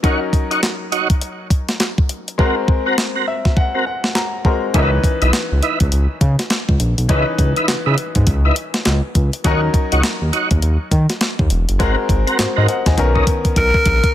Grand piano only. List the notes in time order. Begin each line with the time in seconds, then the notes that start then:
0.03 F#3 C#4 D#4 A#4
2.38 G#3 C4 F#4 A#4
3.28 E5
3.57 F#5
3.87 F#5
4.15 A#5
4.45 G#3 C4 F#4 A#4 A#5
4.74 E3 C#4 D#4 A#4
4.82 B4
7.09 E3 C#4 D#4 B4
9.44 F#3 C#4 D#4 A#4
11.79 G#3 C4 F#4 A#4
12.39 F#4 C5
12.57 A#4 D#5
12.68 C5 F#5
12.87 D#5 G#5
12.97 D#3 B3 C#4 A#4